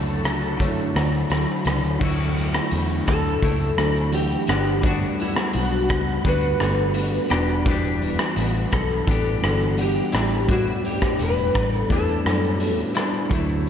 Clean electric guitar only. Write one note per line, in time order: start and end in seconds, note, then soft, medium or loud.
0.00 0.56 D3 medium
0.00 0.60 F#3 medium
0.00 0.62 A3 medium
0.00 1.33 D4 medium
0.57 1.99 D3 medium
0.57 2.06 F#3 medium
0.63 2.01 A3 medium
1.99 3.47 D3 medium
1.99 3.42 A3 medium
1.99 3.43 E4 medium
2.05 3.47 F#4 medium
3.43 4.49 A3 medium
3.43 4.49 E4 medium
4.50 4.83 B3 soft
4.50 4.84 D4 soft
4.82 6.24 G3 medium
4.82 6.25 B3 medium
4.86 6.26 D4 medium
4.86 6.27 F#4 medium
6.25 7.65 G3 medium
6.25 7.34 B3 medium
6.25 7.32 D4 medium
6.25 7.30 F#4 medium
7.30 7.66 B3 soft
7.30 7.67 D4 medium
7.30 7.66 G4 medium
7.66 9.07 E3 medium
7.66 9.07 B3 medium
7.66 9.09 D4 medium
7.71 9.10 G4 medium
9.07 10.16 E3 medium
9.07 10.14 B3 medium
9.07 10.12 D4 medium
9.07 10.51 G4 medium
10.12 10.48 G3 soft
10.12 10.49 D4 soft
10.12 10.48 E4 soft
10.48 11.88 A2 medium
10.48 11.91 G3 medium
10.48 11.92 D4 medium
10.53 11.93 E4 medium
11.89 12.96 A2 medium
11.89 12.97 D4 medium
11.89 12.95 E4 medium
12.95 13.31 G3 soft
12.95 13.32 D4 soft
12.95 13.31 E4 medium
13.29 13.69 D3 medium
13.29 13.69 F#3 medium
13.33 13.69 A3 medium
13.33 13.69 E4 medium